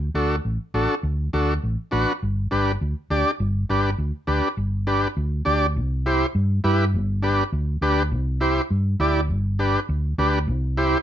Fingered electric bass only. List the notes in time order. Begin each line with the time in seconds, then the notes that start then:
0.14 D2
0.45 A1
0.74 A1
1.03 D2
1.34 D2
1.63 A1
1.93 A1
2.22 G1
2.52 G1
2.81 D2
3.10 D2
3.40 G1
3.70 G1
3.98 D2
4.28 D2
4.57 G1
5.17 D2
5.46 D2
5.76 C2
6.35 G2
6.64 G2
6.94 G1
7.52 D2
7.81 D2
8.11 C2
8.70 G2
8.99 D2
9.28 G1
9.89 D2
10.18 D2
10.48 C2